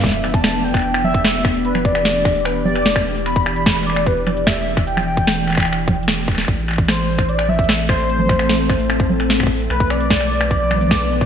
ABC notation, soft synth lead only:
X:1
M:4/4
L:1/16
Q:1/4=149
K:Ephr
V:1 name="Soft synth lead"
e3 a3 g4 e4 z2 | B2 d6 B2 d4 z2 | b6 d2 B2 d2 e4 | g12- g2 z2 |
z4 c4 d2 e4 c2- | c8- c2 z6 | B2 d6 d8 |]